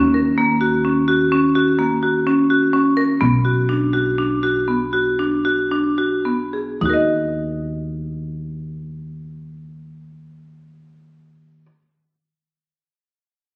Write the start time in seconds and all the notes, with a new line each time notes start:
Already playing: D#2
0.14 A#4
0.38 A#3
0.61 F#4
0.85 C#4
1.08 F#4
1.32 C#4
1.55 F#4
1.79 A#3
2.03 F#4
2.27 C#4
2.50 F#4
2.73 C#4
2.97 A#4
3.21 B1 B3
3.45 F#4
3.69 D4
3.93 F#4
4.18 D4
4.43 F#4
4.68 B3
4.93 F#4
5.19 D4
5.45 F#4
5.71 D4
5.98 F#4
6.25 B3
6.53 G#4
6.81 D#2 D#4
6.86 F#4
6.90 A#4 D#5